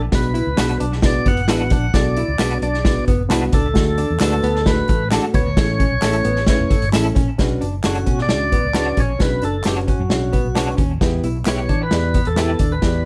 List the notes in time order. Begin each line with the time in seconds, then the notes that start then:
0.12 B1 B3 D4 F#4 B4, kick, snare, closed hi-hat, tambourine
0.34 E4, closed hi-hat, tambourine
0.47 C#2
0.56 B1 B3 D4 F#4 B4, snare, clap, closed hi-hat, tambourine
0.69 closed hi-hat
0.80 B1 D4, closed hi-hat
0.92 snare
1.02 B3 D4 F#4 B4 D5, kick, snare, closed hi-hat
1.26 F#1 B3 F#5, kick, closed hi-hat, tambourine
1.37 closed hi-hat
1.48 A1 B3 D4 E4 F#4 B4, snare, clap, closed hi-hat, tambourine
1.70 A#1 D4 F#5, kick, closed hi-hat, tambourine
1.94 B1 B3 D4 F#4 A4 D5, kick, snare, closed hi-hat, tambourine
2.16 E4, closed hi-hat, tambourine
2.28 C#2
2.39 B1 B3 D4 F#4 B4, snare, clap, closed hi-hat, tambourine
2.51 closed hi-hat
2.62 B1 D4 D5, closed hi-hat, tambourine
2.74 snare
2.84 B3 D4 F#4 B4, kick, snare, closed hi-hat, tambourine
3.08 F#1 B3, kick, closed hi-hat, tambourine
3.29 C2 B3 D4 E4 F#4 B4, snare, clap, closed hi-hat, tambourine
3.53 C#2 D4 A4, kick, closed hi-hat, tambourine
3.74 D2 A3 D4 F#4 A4, kick, snare, closed hi-hat, tambourine
3.98 D4, closed hi-hat, tambourine
4.10 E2
4.20 D2 A3 D4 F#4 A4 B4, snare, clap, closed hi-hat, tambourine
4.42 D2 B3, closed hi-hat, tambourine
4.56 snare
4.65 A3 D4 F#4 A4 B4, kick, snare, closed hi-hat
4.88 A1 A3, kick, closed hi-hat, tambourine
5.11 A3 D4 F#4 A4, snare, clap, closed hi-hat, tambourine
5.34 C#2 B3 C#5, kick, closed hi-hat, tambourine
5.46 D2
5.57 A1 A3 C#4 E4 A4, kick, snare, closed hi-hat, tambourine
5.79 C#4, kick, closed hi-hat, tambourine
5.91 B1
6.02 A1 A3 C#4 E4 A4, snare, clap, closed hi-hat, tambourine
6.13 closed hi-hat
6.25 A1 B3, closed hi-hat, tambourine
6.36 snare
6.47 A3 C#4 E4 B4, kick, snare, closed hi-hat, tambourine
6.59 E1
6.70 F#1 A3, kick, closed hi-hat, tambourine
6.82 G1, closed hi-hat
6.92 A1 A3 C#4 E4 A4, snare, clap, closed hi-hat, tambourine
7.15 A#1 C#4, kick, closed hi-hat, tambourine
7.38 B1 C#4 D4 F#4 B4, kick, snare, closed hi-hat, tambourine
7.61 F#1 D4, closed hi-hat, tambourine
7.84 F#1 C#4 D4 F#4 A4 C#5, snare, clap, closed hi-hat, tambourine
7.95 closed hi-hat
8.06 B2 C#4, kick, closed hi-hat, tambourine
8.18 D5, snare
8.29 C#2 C#4 D4 F#4 D5, snare, closed hi-hat, tambourine
8.52 B3, kick, closed hi-hat, tambourine
8.64 C#2
8.74 C#4 D4 F#4 B4 C#5, snare, clap, closed hi-hat, tambourine
8.97 A#1 C#4 C#5, kick, closed hi-hat, tambourine
9.19 B1 C#4 D4 F#4 B4, kick, snare, closed hi-hat, tambourine
9.42 F#1 D4 A4, closed hi-hat, tambourine
9.64 F#1 C#4 D4 F#4 G4 B4 C#5, snare, clap, closed hi-hat, tambourine
9.77 closed hi-hat
9.87 C#4 F#4, kick, closed hi-hat
9.99 F#2
10.09 B1 C#4 D4 F#4 C#5, snare, closed hi-hat
10.33 B3, kick, closed hi-hat, tambourine
10.44 B1
10.55 C#4 D4 F#4 B4 C#5, snare, clap, closed hi-hat, tambourine
10.77 D#2 C#4, kick, closed hi-hat, tambourine
11.01 E2 B3 E4 G4 B4, kick, snare, closed hi-hat, tambourine
11.23 B1 E4, closed hi-hat, tambourine
11.45 B1 B3 E4 G4 B4 C#5, snare, clap, closed hi-hat, tambourine
11.69 E3 D4, kick, closed hi-hat
11.83 B4
11.91 E2 B3 E4 G4 D5, snare, closed hi-hat, tambourine
12.14 B3, kick, closed hi-hat, tambourine
12.25 E2 A4, closed hi-hat
12.35 B3 E4 G4 B4, snare, clap, closed hi-hat, tambourine
12.59 D#2 D4, kick, closed hi-hat, tambourine
12.72 B4
12.82 E2 B3 E4 G4 D5, kick, snare, closed hi-hat, tambourine